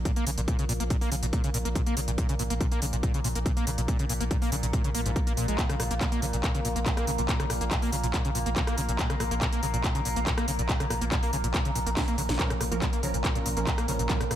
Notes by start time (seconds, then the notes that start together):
Already playing: A#2 A#3 A#5
0.05 A#2, kick, closed hi-hat
0.16 A#3, closed hi-hat
0.27 A#1 C#3, open hi-hat
0.38 A#1 A#2, closed hi-hat
0.48 A#2, kick, closed hi-hat
0.59 A#1 C#3, closed hi-hat
0.69 A#1 A#2, open hi-hat
0.80 A#1 A#3, closed hi-hat
0.90 A#2, kick, closed hi-hat
1.01 A#3, open hi-hat
1.12 A#1 C#3, open hi-hat
1.23 A#1 A#2, closed hi-hat
1.33 A#2, kick, closed hi-hat
1.44 A#1 C#3, closed hi-hat
1.54 A#1 A#2, open hi-hat
1.65 A#1 A#3, closed hi-hat
1.75 A#2, kick, closed hi-hat
1.86 A#3, closed hi-hat
1.97 A#1 C#3, open hi-hat
2.08 A#1 A#2, closed hi-hat
2.18 A#2, kick, closed hi-hat
2.29 A#1 C#3, closed hi-hat
2.39 A#1 A#2, open hi-hat
2.50 A#1 A#3, closed hi-hat
2.61 A#2, kick, closed hi-hat
2.72 A#3, closed hi-hat
2.82 A#1 C#3, open hi-hat
2.93 A#1 A#2, closed hi-hat
3.03 A#2, kick, closed hi-hat
3.14 A#1 C#3, closed hi-hat
3.24 A#1 A#2, open hi-hat
3.35 A#1 A#3, closed hi-hat
3.46 A#2, kick, closed hi-hat
3.57 A#3, closed hi-hat
3.67 A#1 C#3, open hi-hat
3.78 A#1 A#2, closed hi-hat
3.88 A#2, kick, closed hi-hat
3.99 A#1 C#3, closed hi-hat
4.09 A#1 A#2, open hi-hat
4.20 A#1 A#3, closed hi-hat
4.31 A#2, kick, closed hi-hat
4.42 A#3, open hi-hat
4.52 A#1 C#3, open hi-hat
4.63 A#1 A#2, closed hi-hat
4.73 A#2, kick, closed hi-hat
4.84 A#1 C#3, closed hi-hat
4.95 A#1 A#3, open hi-hat
5.06 A#1 G#2, closed hi-hat
5.16 A#3, kick, closed hi-hat
5.27 A#3, closed hi-hat
5.37 A#1 A#2, open hi-hat
5.48 A#1 G#3, closed hi-hat
5.58 A#2, kick, clap, closed hi-hat
5.69 A#1 C#3, cross-stick, closed hi-hat
5.80 A#1 A#2, cross-stick, open hi-hat
5.91 A#1 A#3, closed hi-hat
6.01 A#2, kick, clap, closed hi-hat
6.12 A#3, closed hi-hat
6.22 A#1 C#3, open hi-hat
6.33 A#1 A#2, closed hi-hat
6.43 A#2, kick, clap, closed hi-hat
6.54 A#1 C#3, closed hi-hat
6.65 A#1 A#2, open hi-hat
6.76 A#1 A#3, closed hi-hat
6.86 A#2, kick, clap, closed hi-hat
6.97 A#3, cross-stick, closed hi-hat
7.07 A#1 C#3, open hi-hat
7.18 A#1 A#2, closed hi-hat
7.29 A#2, kick, clap, closed hi-hat
7.40 A#1 C#3, cross-stick, closed hi-hat
7.50 A#1 A#2, cross-stick, open hi-hat
7.61 A#1 A#3, closed hi-hat
7.71 A#2, kick, clap, closed hi-hat
7.82 A#3, open hi-hat
7.92 A#1 C#3, open hi-hat
8.04 A#1 A#2, closed hi-hat
8.14 A#2, kick, clap, closed hi-hat
8.25 A#1 C#3, closed hi-hat
8.35 A#1 A#2, open hi-hat
8.46 A#1 A#3, closed hi-hat
8.56 A#2, kick, clap, closed hi-hat
8.67 A#3, cross-stick, closed hi-hat
8.78 A#1 C#3, open hi-hat
8.89 A#1 A#2, closed hi-hat
8.99 A#2, kick, clap, closed hi-hat
9.10 A#1 C#3, cross-stick, closed hi-hat
9.20 A#1 A#2, cross-stick, open hi-hat
9.31 A#1 A#3, closed hi-hat
9.41 A#2, kick, clap, closed hi-hat
9.53 A#3, closed hi-hat
9.63 A#1 C#3, open hi-hat
9.74 A#1 A#2, closed hi-hat
9.84 A#2, kick, clap, closed hi-hat
9.95 A#1 C#3, closed hi-hat
10.05 A#1 A#2, open hi-hat
10.16 A#1 A#3, closed hi-hat
10.27 A#2, kick, clap, closed hi-hat
10.38 A#3, cross-stick, closed hi-hat
10.48 A#1 C#3, open hi-hat
10.59 A#1 A#2, closed hi-hat
10.69 A#2, kick, clap, closed hi-hat
10.80 A#1 C#3, cross-stick, closed hi-hat
10.90 A#1 A#2, cross-stick, open hi-hat
11.01 A#1 A#3, closed hi-hat
11.12 A#2, kick, clap, closed hi-hat
11.23 A#3, open hi-hat
11.33 A#1 C#3, open hi-hat
11.44 A#1 A#2, closed hi-hat
11.54 A#2, kick, clap, closed hi-hat
11.65 A#1 C#3, closed hi-hat
11.75 A#1 A#2, open hi-hat
11.86 A#1 A#3, closed hi-hat
11.97 A#2, kick, snare, clap, closed hi-hat
12.08 A#3, closed hi-hat
12.18 A#1 C#3, open hi-hat
12.29 A#1 A#2, snare, closed hi-hat
12.39 A#2 F3 A#3 C#4 A#4, kick, clap, closed hi-hat
12.50 A#1 A#2, cross-stick, closed hi-hat
12.61 A#1 A#2, cross-stick, open hi-hat
12.72 A#1 F3 A#3 C#4 A#4, closed hi-hat
12.82 A#2, kick, clap, closed hi-hat
12.93 A#3, closed hi-hat
13.03 A#1 C#3 F3 C#4 A#4, open hi-hat
13.14 A#1 A#2, closed hi-hat
13.24 A#2, kick, clap, closed hi-hat
13.35 A#1 A#2 F3 C#4 A#4, closed hi-hat
13.46 A#1 A#2, open hi-hat
13.57 A#1 F3 A#3 C#4 A#4, closed hi-hat
13.67 A#2, kick, clap, closed hi-hat
13.78 A#3, cross-stick, closed hi-hat
13.88 A#1 C#3 F3 C#4 A#4, open hi-hat
13.99 A#1 A#2, closed hi-hat
14.09 A#2 F3 C#4 A#4, kick, clap, closed hi-hat
14.20 A#1 A#2, cross-stick, closed hi-hat
14.31 A#1 A#2, cross-stick, open hi-hat